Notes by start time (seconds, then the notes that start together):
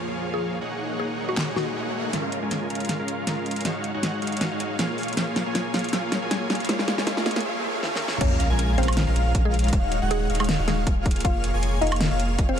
Already playing: F3 A#3 F4 G#4 C#5 F5, riser
0.34 G#4
0.61 A#3 D#4 G#4 C#5 F#5
0.99 G#4
1.29 F#4
1.37 snare, clap
1.56 F#4, snare
2.13 G#3 C#4 F4 A#4 F5, snare, closed hi-hat, riser
2.32 closed hi-hat
2.42 G#3 C#4 F4 A#4 G#5
2.51 snare, closed hi-hat
2.70 G#3 C#4 F4 A#4 F5, closed hi-hat
2.75 closed hi-hat
2.80 closed hi-hat
2.85 closed hi-hat
2.89 snare, closed hi-hat
2.99 G#3 C#4 F4 A#4 F5
3.08 closed hi-hat
3.27 G#3 C#4 F4 A#4 F5, snare, closed hi-hat
3.46 closed hi-hat
3.51 closed hi-hat
3.56 closed hi-hat
3.61 closed hi-hat
3.65 G#3 D#4 F#4 C#5 F5, snare, closed hi-hat
3.84 closed hi-hat
3.94 G#3 D#4 F#4 C#5 F#5
4.03 snare, closed hi-hat
4.22 G#3 D#4 F#4 C#5 F5, closed hi-hat
4.27 closed hi-hat
4.32 closed hi-hat
4.37 closed hi-hat
4.41 snare, closed hi-hat
4.51 G#3 D#4 F#4 C#5 F5
4.60 closed hi-hat
4.79 A#3 F4 G#4 C#5 F5, snare, closed hi-hat
4.98 open hi-hat
5.03 closed hi-hat
5.08 closed hi-hat
5.13 closed hi-hat
5.17 A#3 F4 G#4 C#5 F5, snare, closed hi-hat
5.36 snare, closed hi-hat
5.46 A#3 F4 G#4 C#5 G#5
5.55 snare, closed hi-hat
5.74 A#3 F4 G#4 C#5 F5, snare, closed hi-hat
5.79 closed hi-hat
5.84 closed hi-hat
5.89 closed hi-hat
5.93 A#3 F4 G#4 C#5 F5, snare, closed hi-hat
6.12 snare, closed hi-hat
6.22 A#3 F4 G#4 C#5 G#5
6.31 snare, closed hi-hat
6.50 A#3 F4 G#4 C#5 F5, snare, closed hi-hat
6.55 closed hi-hat
6.60 closed hi-hat
6.65 closed hi-hat
6.69 A#3 F4 G#4 C#5 F5, snare, closed hi-hat
6.79 snare
6.88 snare, closed hi-hat
6.98 A#3 F4 G#4 C#5 G#5, snare
7.07 A#3 F4 G#4 C#5 F5, snare, closed hi-hat
7.17 snare
7.26 snare, closed hi-hat
7.31 closed hi-hat
7.36 A#3 F4 G#4 C#5 G#5, snare, closed hi-hat
7.40 closed hi-hat
7.45 A#3 F4 G#4 C#5 F5
7.64 A#3 F4 G#4 C#5 F5
7.83 A#3 F4 G#4 C#5 F5, snare
7.96 snare
8.02 A#3 F4 G#4 C#5 F5
8.08 snare
8.21 A#1 G#3 C#4 F4 A#4 C#5 F5, kick, closed hi-hat, crash, sub drop
8.40 closed hi-hat
8.50 A#1 G#3 C#4 F4 A#4 G#5
8.59 closed hi-hat
8.78 A#1 G#3 C4 C#4 F4 A#4 C5 F5, closed hi-hat
8.83 closed hi-hat
8.88 closed hi-hat, high woodblock
8.93 closed hi-hat
8.97 snare, closed hi-hat
9.07 A#1 G#3 C#4 F4 A#4 F5
9.16 closed hi-hat
9.35 A#1 G#3 C#4 F4 A#4 F5, kick, closed hi-hat
9.45 G#3 G#4
9.54 closed hi-hat
9.59 closed hi-hat
9.64 closed hi-hat
9.68 closed hi-hat
9.73 D#1 G#3 D#4 F#4 C#5 F5, kick, closed hi-hat
9.92 closed hi-hat
10.02 D#1 G#3 D#4 F#4 C#5 F#5
10.11 G#3 G#4, closed hi-hat
10.30 D#1 G#3 D#4 F#4 C#5 F5, closed hi-hat
10.35 closed hi-hat
10.40 G#3 G#4, closed hi-hat, high woodblock
10.44 closed hi-hat
10.49 snare, closed hi-hat
10.59 D#1 G#3 D#4 F#4 C#5 F5
10.68 G#3 G#4, snare, closed hi-hat
10.87 D#1 A#3 F4 G#4 C#5 F5, kick, closed hi-hat
11.06 kick, closed hi-hat
11.11 closed hi-hat
11.16 closed hi-hat
11.20 closed hi-hat
11.24 F1 A#3 F4 G#4 C#5 F5, kick, closed hi-hat
11.44 closed hi-hat
11.54 F1 A#3 F4 G#4 C#5 G#5
11.63 closed hi-hat
11.81 F1 A#3 D#4 F4 G#4 C#5 D#5 F5, closed hi-hat
11.87 closed hi-hat
11.92 closed hi-hat, high woodblock
11.96 closed hi-hat
12.01 snare, closed hi-hat
12.11 F1 A#3 F4 G#4 C#5 F5
12.20 closed hi-hat
12.39 F1 A#3 F4 G#4 C#5 F5, kick, closed hi-hat
12.49 C4 C5